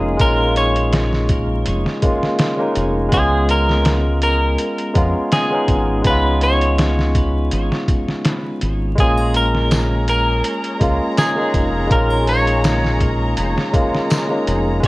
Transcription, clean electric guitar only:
0.00 0.21 G#4 medium
0.21 0.57 A#4 loud
0.57 2.72 C#5 loud
3.14 3.50 G#4 medium
3.51 4.19 A#4 loud
4.23 5.32 A#4 loud
5.33 6.02 G#4 medium
6.07 6.43 B4 loud
6.43 8.58 C#5 loud
9.00 9.36 G#4 medium
9.36 10.08 A#4 medium
10.09 11.14 A#4 loud
11.19 11.87 G#4 medium
11.92 12.29 A#4 loud
12.29 14.44 C#5 loud

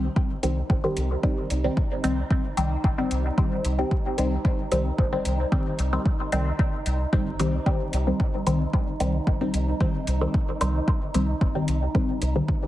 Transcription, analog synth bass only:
0.43 0.62 C2 loud
0.70 0.89 G1 medium
0.97 1.16 C2 medium
1.50 1.70 C2 loud
2.04 2.23 C2 medium
2.57 2.77 C2 loud
2.84 3.04 G1 medium
3.11 3.30 C2 medium
3.65 3.84 C2 loud
4.18 4.38 C2 medium
4.72 4.91 C2 loud
4.98 5.18 G1 medium
5.25 5.45 C2 medium
5.79 5.98 C2 loud
6.32 6.52 C2 medium
6.86 7.05 C2 medium
7.13 7.41 G1 medium
7.39 7.59 C2 loud
7.93 8.12 C2 loud
8.47 8.66 C2 medium
9.00 9.20 C2 loud
9.27 9.46 G1 medium
9.54 9.73 C2 medium
10.07 10.27 C2 loud
10.61 10.80 C2 medium
11.14 11.34 C2 loud
11.41 11.61 G1 medium
11.68 11.88 C2 medium
12.22 12.41 C2 loud

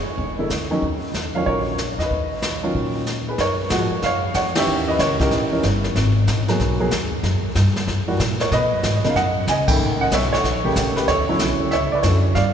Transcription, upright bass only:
0.06 muted upright bass stroke soft
0.18 0.48 E1 medium
0.50 0.80 D2 medium
0.82 1.12 D#2 medium
1.14 1.44 E2 medium
1.46 1.95 A#1 medium
1.98 2.09 E2 medium
2.11 2.72 D#2 medium
2.74 3.36 A#2 medium
3.38 3.70 F#2 medium
3.70 3.90 G#2 medium
3.91 muted upright bass stroke soft
4.02 4.34 F#2 medium
4.34 4.66 F2 medium
4.67 4.98 D#2 medium
4.99 5.30 C#2 medium
5.31 5.50 A#1 medium
5.51 muted upright bass stroke soft
5.63 5.94 G1 medium
5.95 6.26 G#1 medium
6.27 6.58 A#1 medium
6.59 6.90 B1 medium
6.91 7.22 D#2 medium
7.23 7.42 F#2 medium
7.43 muted upright bass stroke soft
7.55 7.86 G2 medium
7.87 8.18 F#2 medium
8.19 8.50 A#2 medium
8.52 8.62 B2 medium
8.62 8.72 A#2 medium
8.72 8.83 F#2 medium
8.83 9.03 G#2 medium
9.04 muted upright bass stroke soft
9.15 9.47 F#2 medium
9.47 9.78 C#2 medium
9.79 10.10 A1 medium
10.11 10.43 B1 medium
10.43 10.75 A#1 medium
10.76 10.95 A#1 loud
10.96 muted upright bass stroke soft
11.08 11.38 D2 medium
11.39 11.59 B1 medium
11.60 muted upright bass stroke soft
11.71 12.03 C#2 medium
12.03 12.34 F#2 medium
12.35 12.53 G2 medium

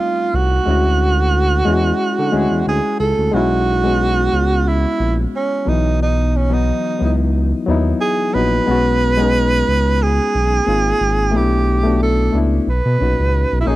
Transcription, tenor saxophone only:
0.00 0.37 F4 medium
0.35 2.67 F#4 medium
2.68 2.98 G#4 medium
3.00 3.35 A4 medium
3.34 4.70 F#4 loud
4.68 5.19 E4 medium
5.36 5.70 C#4 medium
5.69 6.01 D#4 medium
6.02 6.38 D#4 medium
6.36 6.55 C#4 medium
6.53 7.19 D#4 medium
8.01 8.35 G#4 loud
8.34 10.04 B4 loud
10.03 11.38 G#4 loud
11.37 12.01 G4 medium
12.03 12.39 A4 medium
12.70 13.57 B4 medium
13.60 13.68 E4 medium
13.67 13.76 D#4 medium

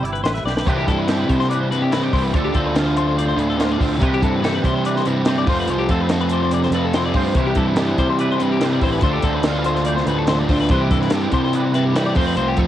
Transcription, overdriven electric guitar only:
0.66 1.07 C3 medium
0.66 1.07 E3 medium
0.66 0.89 G3 medium
0.66 0.90 C4 medium
0.66 0.87 E4 medium
0.88 1.08 G3 medium
0.88 1.10 C4 medium
0.88 1.10 E4 medium
1.08 1.92 C3 medium
1.08 1.91 E3 medium
1.08 1.72 G3 medium
1.08 1.72 C4 loud
1.08 1.70 E4 loud
1.71 1.92 G3 medium
1.71 1.93 C4 medium
1.71 1.93 E4 medium
1.92 2.33 E3 medium
1.92 2.15 G3 medium
1.92 2.14 C4 medium
1.92 2.12 E4 medium
2.13 2.34 G3 soft
2.13 2.35 C4 medium
2.13 2.33 E4 medium
2.34 2.73 D3 medium
2.34 2.56 A3 medium
2.34 2.55 D4 medium
2.34 2.53 F4 medium
2.54 2.74 A3 medium
2.54 2.76 D4 medium
2.54 2.76 F4 medium
2.74 3.57 D3 medium
2.74 3.37 A3 medium
2.74 3.36 D4 medium
2.74 3.35 F4 loud
3.37 3.57 A3 soft
3.37 3.59 D4 medium
3.37 3.59 F4 medium
3.58 3.99 D3 medium
3.58 3.79 A3 medium
3.58 3.79 D4 medium
3.58 3.77 F4 medium
3.78 3.99 A3 medium
3.78 4.00 D4 medium
3.78 3.99 F4 medium
3.98 4.40 C3 medium
3.98 4.42 E3 medium
3.98 4.21 G3 medium
3.98 4.20 C4 medium
3.98 4.20 E4 medium
4.20 4.42 G3 medium
4.20 4.43 C4 medium
4.20 4.43 E4 medium
4.42 5.26 C3 loud
4.42 5.25 E3 loud
4.42 5.06 G3 loud
4.42 5.06 C4 loud
4.42 5.05 E4 loud
5.05 5.25 G3 medium
5.05 5.26 C4 medium
5.05 5.28 E4 medium
5.25 5.48 E3 medium
5.25 5.47 G3 medium
5.25 5.47 C4 medium
5.25 5.46 E4 medium
5.47 5.66 F3 medium
5.47 5.68 A3 medium
5.47 5.69 C4 medium
5.47 5.69 F4 loud
5.68 6.10 F3 medium
5.68 5.89 A3 medium
5.68 5.89 C4 medium
5.68 5.88 F4 loud
5.89 6.11 A3 medium
5.89 6.12 C4 medium
5.89 6.11 F4 medium
6.11 6.92 F3 medium
6.11 6.74 A3 loud
6.11 6.74 C4 loud
6.11 6.72 F4 loud
6.73 6.94 A3 medium
6.73 6.95 C4 medium
6.73 6.94 F4 medium
6.94 7.35 F3 medium
6.94 7.16 A3 medium
6.94 7.16 C4 medium
6.94 7.13 F4 medium
7.14 7.36 A3 medium
7.14 7.37 C4 medium
7.14 7.34 F4 medium
7.36 7.74 C3 medium
7.36 7.75 E3 medium
7.36 7.57 G3 medium
7.36 7.57 C4 loud
7.36 7.54 E4 loud
7.56 7.75 G3 medium
7.56 7.76 C4 medium
7.56 7.76 E4 medium
7.75 8.60 C3 medium
7.75 8.58 E3 medium
7.75 8.39 G3 loud
7.75 8.39 C4 loud
7.75 8.37 E4 loud
8.38 8.59 G3 medium
8.38 8.60 C4 medium
8.38 8.60 E4 medium
8.59 9.01 E3 medium
8.59 8.83 G3 medium
8.59 8.82 C4 medium
8.59 8.80 E4 medium
8.82 9.03 G3 medium
8.82 9.05 C4 medium
8.82 9.02 E4 medium
9.04 9.44 D3 medium
9.04 9.25 A3 loud
9.04 9.25 D4 medium
9.04 9.23 F4 loud
9.24 9.44 A3 medium
9.24 9.46 D4 medium
9.24 9.46 F4 medium
9.45 10.27 D3 medium
9.45 10.09 A3 medium
9.45 10.08 D4 loud
9.45 10.07 F4 loud
10.08 10.29 A3 medium
10.08 10.29 D4 medium
10.08 10.30 F4 medium
10.29 10.69 D3 medium
10.29 10.50 A3 medium
10.29 10.50 D4 medium
10.29 10.48 F4 medium
10.49 10.70 A3 medium
10.49 10.70 D4 medium
10.49 10.69 F4 medium
10.70 11.11 C3 medium
10.70 11.12 E3 medium
10.70 10.92 G3 medium
10.70 10.92 C4 loud
10.70 10.90 E4 medium
10.91 11.12 G3 medium
10.91 11.13 C4 medium
10.91 11.14 E4 medium
11.13 11.96 C3 loud
11.13 11.94 E3 loud
11.13 11.75 G3 loud
11.13 11.75 C4 loud
11.13 11.74 E4 loud
11.74 11.94 G3 medium
11.74 11.95 C4 medium
11.74 11.96 E4 medium
11.94 12.18 E3 medium
11.94 12.15 G3 medium
11.94 12.16 C4 medium
11.94 12.16 E4 medium
12.16 12.36 F3 medium
12.16 12.36 A3 medium
12.16 12.37 C4 medium
12.16 12.38 F4 medium
12.37 12.67 F3 medium
12.37 12.58 A3 loud
12.37 12.57 C4 loud
12.37 12.56 F4 loud
12.57 12.67 A3 medium
12.57 12.67 C4 medium
12.57 12.67 F4 medium

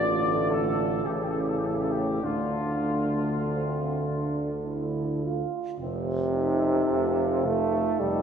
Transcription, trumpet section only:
0.00 0.49 D5 medium
0.50 1.06 A4 medium
1.05 1.14 G4 soft
1.14 1.22 A4 soft
1.23 1.31 G4 soft
1.29 1.38 A4 soft
1.40 1.48 G4 soft
1.48 1.56 A4 soft
1.57 1.65 G4 soft
1.65 1.73 A4 soft
1.74 1.82 G4 soft
1.82 1.91 A4 soft
1.92 2.24 G4 soft
2.24 4.65 F4 medium
6.36 7.43 A4 soft
7.45 8.22 A4 soft

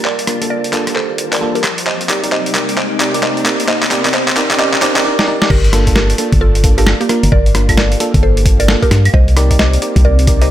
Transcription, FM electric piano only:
0.27 0.39 A#3 medium
0.27 0.39 D4 medium
0.27 0.39 F4 medium
0.27 0.39 A#4 medium
0.42 0.71 A#3 medium
0.42 0.71 D4 medium
0.42 0.71 F4 medium
0.42 0.71 A4 medium
0.73 1.39 A#3 medium
0.73 1.39 D4 medium
0.73 1.39 F4 medium
0.73 1.39 A4 medium
1.41 1.60 A#3 loud
1.41 1.60 D4 medium
1.41 1.60 F4 medium
1.41 1.60 A4 loud
2.09 2.21 D#4 medium
2.09 2.21 G4 medium
2.09 2.21 A#4 medium
2.09 2.21 D5 medium
2.23 2.53 D#4 medium
2.23 2.53 G4 medium
2.23 2.53 A#4 medium
2.23 2.53 D5 medium
2.55 2.76 D#4 medium
2.55 2.76 G4 medium
2.55 2.76 A#4 medium
2.55 2.76 D5 medium
3.00 3.12 D#4 medium
3.00 3.12 G4 medium
3.00 3.12 A#4 medium
3.00 3.12 D5 loud
3.14 3.44 D#4 medium
3.14 3.44 G4 medium
3.14 3.44 A#4 medium
3.14 3.44 D5 loud
3.46 3.67 D#4 medium
3.46 3.67 G4 medium
3.46 3.67 A#4 medium
3.46 3.67 D5 medium
3.91 4.03 D#4 medium
3.91 4.03 G4 medium
3.91 4.03 A#4 medium
3.91 4.03 D5 loud
4.05 4.12 D#4 medium
4.05 4.12 G4 medium
4.05 4.12 A#4 medium
4.05 4.12 D5 medium
4.36 4.49 D#4 medium
4.36 4.49 G4 medium
4.36 4.49 A#4 medium
4.36 4.49 D5 loud
4.51 4.58 D#4 medium
4.51 4.58 G4 medium
4.51 4.58 A#4 medium
4.51 4.58 D5 loud
4.59 4.71 D#4 loud
4.59 4.71 G4 medium
4.59 4.71 A#4 medium
4.59 4.71 D5 loud
4.73 4.81 D#4 medium
4.73 4.81 G4 medium
4.73 4.81 A#4 medium
4.73 4.81 D5 loud
4.82 4.94 D#4 loud
4.82 4.94 G4 medium
4.82 4.94 A#4 medium
4.82 4.94 D5 loud
4.96 5.03 D#4 loud
4.96 5.03 G4 medium
4.96 5.03 A#4 medium
4.96 5.03 D5 loud
5.05 5.17 D#4 loud
5.05 5.17 G4 medium
5.05 5.17 A#4 medium
5.05 5.17 D5 loud
5.19 5.26 D#4 loud
5.19 5.26 G4 medium
5.19 5.26 A#4 medium
5.19 5.26 D5 loud
5.27 5.39 D#4 loud
5.27 5.39 G4 medium
5.27 5.39 A#4 medium
5.27 5.39 D5 loud
5.42 5.49 D#4 medium
5.42 5.49 G4 medium
5.42 5.49 A#4 medium
5.42 5.49 D5 loud
5.73 5.85 A#3 medium
5.73 5.85 D4 medium
5.73 5.85 F4 medium
5.73 5.85 A4 loud
5.87 6.16 A#3 medium
5.87 6.16 D4 medium
5.87 6.16 F4 medium
5.87 6.16 A4 loud
6.18 6.62 A#3 medium
6.18 6.62 D4 medium
6.18 6.62 F4 medium
6.18 6.62 A4 medium
6.64 6.76 A#3 medium
6.64 6.76 D4 medium
6.64 6.76 F4 medium
6.64 6.76 A4 loud
6.78 6.95 A#3 medium
6.78 6.95 D4 medium
6.78 6.95 F4 medium
6.78 6.95 A4 loud
7.09 7.28 A#3 medium
7.09 7.29 D4 medium
7.09 7.28 F4 medium
7.09 7.29 A#4 loud
7.55 7.67 A#3 medium
7.55 7.67 D4 medium
7.55 7.67 F4 medium
7.55 7.67 A#4 medium
7.69 7.98 A#3 medium
7.69 7.98 D4 medium
7.69 7.98 F4 medium
7.69 7.98 A4 medium
8.00 8.66 A#3 medium
8.00 8.66 D4 medium
8.00 8.66 F4 medium
8.00 8.66 A4 loud
8.68 8.88 A#3 loud
8.68 8.88 D4 medium
8.68 8.88 F4 medium
8.68 8.88 A4 loud
9.37 9.49 D#4 medium
9.37 9.49 G4 medium
9.37 9.49 A#4 medium
9.37 9.49 D5 loud
9.51 9.80 D#4 medium
9.51 9.80 G4 medium
9.51 9.80 A#4 medium
9.51 9.80 D5 loud
9.82 10.25 D#4 medium
9.82 10.25 G4 medium
9.82 10.25 A#4 medium
9.82 10.25 D5 medium
10.28 10.40 D#4 medium
10.28 10.40 G4 medium
10.28 10.40 A#4 medium
10.28 10.40 D5 loud
10.42 10.51 D#4 loud
10.42 10.51 G4 medium
10.42 10.51 A#4 medium
10.42 10.51 D5 loud

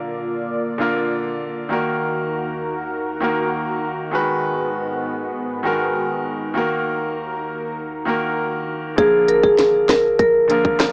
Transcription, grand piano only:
0.00 0.33 D3 medium
0.00 0.34 A#3 medium
0.00 0.35 F4 medium
0.00 0.35 A#4 medium
0.78 1.58 D3 medium
0.78 1.59 A#3 medium
0.78 1.60 F4 medium
0.78 1.60 A#4 loud
1.69 2.76 D#3 medium
1.69 2.76 A#3 medium
1.69 2.77 F#4 medium
1.69 2.78 A#4 medium
3.21 4.01 D#3 medium
3.21 4.01 A#3 medium
3.21 4.02 F#4 medium
3.21 4.03 A#4 medium
4.11 5.18 D#3 medium
4.11 5.19 G#3 medium
4.11 5.19 F#4 medium
4.11 5.20 B4 loud
5.63 6.43 D#3 medium
5.63 6.44 G#3 medium
5.63 6.44 F#4 medium
5.63 6.45 A#4 loud
6.54 7.61 D#3 medium
6.54 7.61 A#3 medium
6.54 7.62 F#4 medium
6.54 7.62 A#4 medium
8.05 8.86 D#3 medium
8.05 8.86 A#3 medium
8.05 8.87 F#4 medium
8.05 8.87 A#4 loud
8.96 10.03 D3 medium
8.96 10.03 F3 medium
8.96 10.04 A#3 medium
8.96 10.04 F4 medium
8.96 10.05 A#4 medium
10.48 10.92 D3 medium
10.48 10.92 F3 medium
10.48 10.92 A#3 medium
10.48 10.92 F4 medium
10.48 10.92 A#4 medium

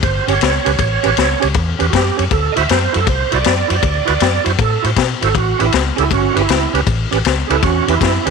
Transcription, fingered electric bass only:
0.03 0.19 G1 medium
0.28 0.36 G1 medium
0.41 0.57 C#2 medium
0.67 0.75 C#2 medium
0.79 0.96 A1 medium
1.05 1.13 A1 medium
1.17 1.34 C#2 medium
1.43 1.51 C#2 medium
1.55 1.72 E2 medium
1.80 1.89 E2 medium
1.93 2.09 F#2 medium
2.19 2.27 F#2 medium
2.31 2.48 D2 medium
2.57 2.65 D2 medium
2.70 2.86 F#2 medium
2.96 3.04 F#2 loud
3.07 3.24 C2 medium
3.33 3.41 C2 medium
3.46 3.62 F#2 medium
3.70 3.79 F#2 medium
3.83 4.00 D2 medium
4.08 4.17 D2 medium
4.21 4.38 F#2 loud
4.46 4.55 F#2 medium
4.59 4.75 A2 medium
4.84 4.93 A2 loud
4.97 5.13 B2 medium
5.22 5.31 G#1 medium
5.35 5.52 A1 loud
5.61 5.69 A1 medium
5.74 5.90 C#2 medium
5.98 6.07 C#2 medium
6.11 6.28 G1 medium
6.36 6.45 G1 medium
6.49 6.65 C#2 medium
6.74 6.82 C#2 medium
6.87 7.03 A1 medium
7.12 7.21 A1 medium
7.26 7.42 C#2 medium
7.50 7.58 C#2 medium
7.63 7.79 E2 medium
7.88 7.97 E2 medium
8.01 8.17 F#2 medium
8.27 8.30 D#2 medium

